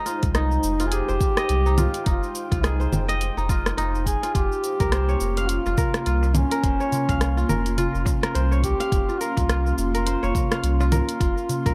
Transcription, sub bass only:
0.23 0.58 C2 medium
0.64 1.01 F1 medium
1.09 1.18 F1 loud
1.49 1.87 C2 medium
2.06 2.18 F1 loud
2.52 2.87 C2 medium
2.92 3.30 F1 medium
3.37 3.72 F1 loud
3.78 4.16 F1 loud
4.35 4.47 F1 loud
4.80 5.15 C2 medium
5.21 5.59 F1 medium
5.66 5.75 F1 loud
6.06 6.44 C2 medium
6.64 6.76 F1 loud
7.09 7.44 C2 medium
7.49 7.87 F1 medium
7.95 8.03 F1 loud
8.35 8.73 C2 medium
8.92 9.04 F1 loud
9.37 9.73 C2 medium
9.78 10.16 F1 medium
10.23 10.32 F1 medium
10.63 11.01 C2 medium
11.21 11.33 F1 loud
11.66 11.74 C2 medium

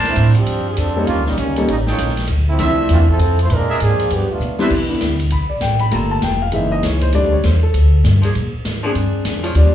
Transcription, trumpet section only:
0.00 0.32 D4 loud
0.00 0.32 A#4 medium
0.00 0.32 C5 medium
0.00 0.32 A5 loud
1.87 2.27 D#4 medium
1.87 2.27 A4 medium
1.87 2.27 C#5 medium
1.87 2.27 G5 medium
2.59 3.04 D4 medium
2.59 3.04 C5 medium
2.59 3.04 E5 loud
3.70 3.77 D4 medium
3.70 3.77 G#4 medium
3.70 3.77 A#4 medium
3.70 3.77 E5 medium
4.60 4.68 D4 medium
4.60 4.67 B4 medium
4.60 4.68 C5 medium
4.60 4.68 E5 medium

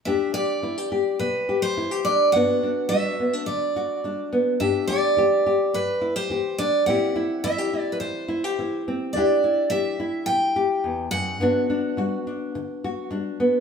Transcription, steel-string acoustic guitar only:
0.05 0.34 E5 medium
0.34 1.22 D5 medium
1.19 1.59 B4 medium
1.62 2.06 C5 medium
2.05 2.31 D5 medium
2.32 2.88 F#5 medium
2.89 3.42 E5 medium
3.46 4.27 D5 medium
4.60 4.87 E5 medium
4.88 5.76 D5 medium
5.74 6.15 B4 medium
6.16 6.60 C5 medium
6.58 6.85 D5 medium
6.86 7.43 F#5 medium
7.44 7.80 E5 medium
7.80 7.90 D5 medium
7.92 8.00 B4 soft
8.00 8.81 C5 medium
9.13 9.72 D5 medium
9.70 10.23 E5 medium
10.26 11.11 G5 medium
11.11 12.21 F#5 medium

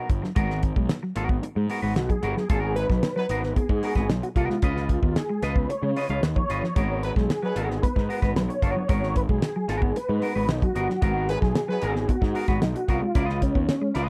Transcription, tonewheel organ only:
1.96 2.10 F#4 loud
2.10 2.48 G#4 loud
2.50 2.77 G#4 loud
2.76 3.15 B4 loud
3.16 3.53 B4 loud
3.56 4.11 G#4 loud
4.10 4.16 D#4 medium
4.23 4.29 F#4 medium
4.36 5.19 F4 loud
5.17 5.44 G#4 loud
5.43 5.70 B4 loud
5.70 6.25 C#5 loud
6.22 6.28 B4 loud
6.36 6.74 C#5 loud
6.75 7.03 C#5 loud
7.02 7.15 B4 loud
7.17 7.55 G#4 medium
7.56 7.83 G#4 medium
7.83 8.32 B4 loud
8.36 8.42 B4 loud
8.49 8.88 C#5 loud
8.90 9.17 C#5 loud
9.17 9.23 B4 loud
9.30 9.69 G#4 loud
9.70 9.97 G#4 medium
9.97 10.51 B4 loud
10.50 10.63 D#4 loud
10.63 11.01 F#4 loud
11.03 11.30 F#4 loud
11.29 11.68 G#4 loud
11.69 12.10 G#4 medium
12.10 12.64 F#4 medium
12.62 12.76 D#4 loud
12.76 12.88 F#4 medium
12.89 13.44 F4 medium
13.43 13.97 C#4 loud
13.96 14.08 F4 medium

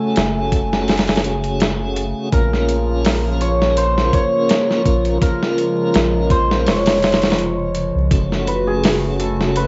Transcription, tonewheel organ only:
0.00 1.20 A3 medium
0.00 1.21 C#4 medium
0.00 1.21 F#4 medium
0.00 1.22 A4 medium
1.24 2.29 A3 medium
1.24 2.29 C#4 medium
1.24 2.29 F#4 medium
1.24 2.30 G#4 medium
2.32 4.81 A#3 medium
2.32 4.82 C#4 medium
2.32 4.82 F4 medium
2.32 4.83 A#4 medium
4.86 5.18 A#3 medium
4.86 5.18 C#4 medium
4.86 5.18 F4 medium
4.86 5.18 A#4 loud
5.21 6.98 A#3 medium
5.21 6.98 C#4 medium
5.21 6.99 F4 medium
5.21 6.99 A#4 medium
8.11 9.67 A3 medium
8.11 9.67 C#4 medium
8.11 9.67 F#4 medium

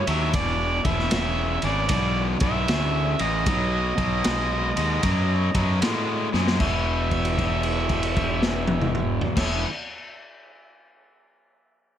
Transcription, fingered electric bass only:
0.08 0.36 D#2 medium
0.34 0.80 E1 medium
0.85 1.09 E1 medium
1.12 1.58 E1 medium
1.63 1.87 G#1 medium
1.90 2.36 B1 loud
2.42 2.65 B1 medium
2.69 3.14 D2 medium
3.21 3.47 A1 medium
3.47 3.93 B1 medium
3.98 4.22 B1 medium
4.27 4.72 B1 medium
4.78 5.01 D#2 medium
5.04 5.49 F#2 loud
5.55 5.79 F#2 medium
5.82 6.28 A2 medium
6.34 6.58 F#2 medium
6.60 9.20 E1 medium
9.38 9.64 E1 medium

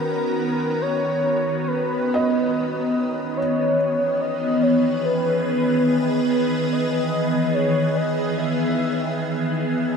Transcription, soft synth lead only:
0.00 0.83 A#4 medium
0.81 1.69 C#5 medium
1.68 2.94 B4 medium
3.37 4.22 C#5 loud
4.21 4.64 D#5 loud
4.62 5.06 C#5 medium
5.04 6.29 B4 medium
6.72 7.55 D#5 medium
7.54 7.98 C#5 loud
7.97 8.39 D#5 medium
8.37 9.62 E5 loud

